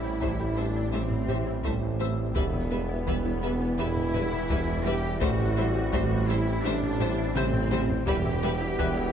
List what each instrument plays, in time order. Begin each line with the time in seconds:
Already playing: tuba A1, double bass section A1, detuned saw bass A1, trombone section E3 G3, french horn section C4 E4, cello section E4, felt piano B5 E6
0.04 synth arpeggio sound G4
0.21 double bass section A1, tuba A1, viola section G3, synth arpeggio sound A3, violin section C5 E5, felt piano B5, taiko
0.40 synth arpeggio sound G4
0.57 viola section G3, cello section D4, synth arpeggio sound E4, violin section C5 E5
0.76 synth arpeggio sound E4
0.92 tuba A1, double bass section A1, viola section G3, synth arpeggio sound A3, cello section C4, violin section C5 E5
1.11 taiko low-mid
1.28 viola section G3, synth arpeggio sound G4, violin section C5 E5, taiko low-mid
1.47 synth arpeggio sound E4
1.64 tuba A1, double bass section A1, viola section G3, synth arpeggio sound A3, violin section C5 E5, taiko
1.99 viola section G3, synth arpeggio sound C4, violin section C5 E5, felt piano E6
2.34 double bass section E1, tuba E1, detuned saw bass E1, synth arpeggio sound E3, trombone section E3 G3, viola section G3, cello section B3, french horn section B3 E4, violin section B4 E5, taiko
2.54 synth arpeggio sound E4, taiko low-mid
2.70 viola section G3, synth arpeggio sound B3, violin section B4 E5
2.89 synth arpeggio sound E4
3.07 double bass section E1, tuba E1, synth arpeggio sound E3, viola section G3, violin section B4 E5, taiko
3.25 synth arpeggio sound E4
3.42 viola section G3, synth arpeggio sound B3, violin section B4 E5
3.61 synth arpeggio sound B3
3.78 double bass section E1, tuba E1, synth arpeggio sound E3, viola section G3, cello section E4, violin section B4 E5
3.97 taiko low-mid
4.14 viola section G3, synth arpeggio sound E4, violin section B4 E5, taiko low-mid
4.32 synth arpeggio sound B3
4.50 double bass section E1, tuba E1, synth arpeggio sound E3, viola section G3, violin section B4 E5, taiko
4.85 viola section G3, synth arpeggio sound G3, cello section G4, violin section B4 E5
5.20 double bass section A1, detuned saw bass A1, tuba A1, viola section G3, synth arpeggio sound A3, french horn section C4, cello section F#4, violin section C5 E5, taiko
5.39 synth arpeggio sound G4, taiko low-mid
5.56 viola section G3, synth arpeggio sound E4, violin section C5 E5
5.76 synth arpeggio sound G4
5.93 double bass section A1, tuba A1, viola section G3, synth arpeggio sound A3, violin section C5 E5, taiko
6.11 synth arpeggio sound G4
6.28 viola section G3, cello section E4, synth arpeggio sound E4, violin section C5 E5
6.47 synth arpeggio sound E4
6.64 double bass section A1, tuba A1, viola section G3, synth arpeggio sound A3, cello section D4, violin section C5 E5
6.82 taiko low-mid
7.00 viola section G3, synth arpeggio sound G4, violin section C5 E5, taiko low-mid
7.18 synth arpeggio sound E4
7.35 double bass section A1, tuba A1, viola section G3, synth arpeggio sound A3, cello section C4, violin section C5 E5, felt piano G6, taiko mid
7.54 taiko low-mid
7.71 viola section G3, synth arpeggio sound C4, violin section C5 E5, taiko low-mid
7.90 taiko low
8.07 double bass section E1, tuba E1, detuned saw bass E1, synth arpeggio sound E3, trombone section E3 G3, viola section G3, french horn section B3 E4, cello section G4, violin section B4 E5, taiko
8.25 synth arpeggio sound E4, taiko low-mid
8.43 viola section G3, synth arpeggio sound B3, violin section B4 E5
8.61 synth arpeggio sound E4
8.78 double bass section E1, tuba E1, synth arpeggio sound E3, viola section G3, violin section B4 E5, felt piano F#6, taiko
8.97 synth arpeggio sound E4